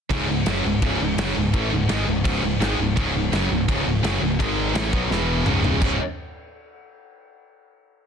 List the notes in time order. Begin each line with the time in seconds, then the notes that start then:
0.10 C#1 C#2 G#2 C#3, kick, crash
0.28 C#1 C#2 G#2
0.46 F#1 F#2 C#3 F#3, snare, crash
0.64 C#1 C#2 G#2
0.82 C#1 C#2 G#2 C#3, kick, crash
1.00 C#1 C#2 G#2
1.18 F#1 F#2 C#3 F#3, snare, crash
1.36 C#1 C#2 G#2
1.54 A1 A2 E3 A3, kick, crash
1.71 C#1 C#2 G#2
1.89 G#1 G#2 D#3 G#3, snare, crash
2.07 C#1 C#2 G#2
2.24 C#1 C#2 G#2 C#3, kick, crash
2.42 C#1 C#2 G#2
2.60 G#1 G#2 D#3 G#3, snare, crash
2.77 C#1 C#2 G#2
2.97 C#1 C#2 G#2 C#3, kick, crash
3.14 C#1 C#2 G#2
3.32 F#1 F#2 C#3 F#3, snare, crash
3.50 C#1 C#2 G#2
3.68 C#1 C#2 G#2 C#3, kick, crash
3.86 C#1 C#2 G#2
4.03 F#1 F#2 C#3 F#3, snare, crash
4.21 C#1 C#2 G#2
4.39 G#1 G#2 D#3 G#3, kick, crash
4.74 A1 A2 E3 A3, snare, crash
4.92 B1 B2 F#3 B3, kick
5.10 E1 E2 B2 E3, snare
5.46 C#1 C#2 G#2 C#3, mid tom
5.64 floor tom
5.81 C#1 C#2 G#2 C#3, kick, crash